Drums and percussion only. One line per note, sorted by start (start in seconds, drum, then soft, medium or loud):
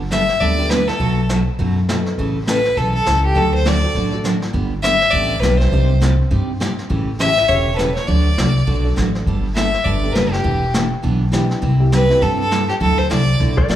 0.11 snare medium
0.11 hi-hat pedal medium
0.29 snare soft
0.41 brush sweep soft
0.41 kick soft
0.70 snare medium
0.70 hi-hat pedal medium
0.88 snare soft
1.00 brush sweep soft
1.00 kick soft
1.29 snare medium
1.29 hi-hat pedal medium
1.59 brush sweep soft
1.59 kick soft
1.89 snare medium
1.89 hi-hat pedal medium
2.06 snare soft
2.18 brush sweep medium
2.18 kick soft
2.47 snare medium
2.47 hi-hat pedal medium
2.65 snare soft
2.77 brush sweep soft
2.77 kick soft
3.06 snare medium
3.06 hi-hat pedal medium
3.36 brush sweep soft
3.36 kick soft
3.66 snare medium
3.66 hi-hat pedal soft
3.95 brush sweep soft
3.95 kick soft
4.24 snare medium
4.24 hi-hat pedal medium
4.42 snare soft
4.54 brush sweep soft
4.54 kick soft
4.84 snare medium
4.84 hi-hat pedal medium
5.01 snare soft
5.13 brush sweep soft
5.13 kick soft
5.43 snare medium
5.43 hi-hat pedal medium
5.60 snare soft
5.72 brush sweep soft
5.72 kick soft
6.02 snare medium
6.02 hi-hat pedal medium
6.31 brush sweep soft
6.31 kick soft
6.61 snare medium
6.61 hi-hat pedal medium
6.78 snare soft
6.90 brush sweep medium
6.90 kick soft
7.20 snare medium
7.20 hi-hat pedal medium
7.37 snare soft
7.49 brush sweep medium
7.49 kick soft
7.79 snare medium
7.79 hi-hat pedal medium
7.96 snare soft
8.08 brush sweep soft
8.08 kick soft
8.38 snare medium
8.38 hi-hat pedal medium
8.67 brush sweep soft
8.67 kick soft
8.97 snare medium
8.97 hi-hat pedal medium
9.15 snare soft
9.27 brush sweep medium
9.27 kick soft
9.56 snare medium
9.56 hi-hat pedal medium
9.74 snare soft
9.86 brush sweep soft
9.86 kick soft
10.15 snare medium
10.15 hi-hat pedal soft
10.33 snare soft
10.45 brush sweep medium
10.45 kick soft
10.74 snare medium
10.74 hi-hat pedal medium
11.03 brush sweep medium
11.03 kick soft
11.33 snare medium
11.33 hi-hat pedal medium
11.51 snare soft
11.63 brush sweep soft
11.63 kick soft
11.92 snare medium
11.92 hi-hat pedal medium
12.10 snare soft
12.22 brush sweep soft
12.22 kick soft
12.51 snare medium
12.51 hi-hat pedal soft
12.69 snare soft
12.81 brush sweep medium
12.81 kick soft
13.10 snare medium
13.10 hi-hat pedal medium
13.40 brush sweep soft
13.40 kick soft
13.58 kick medium
13.70 snare medium
13.70 hi-hat pedal medium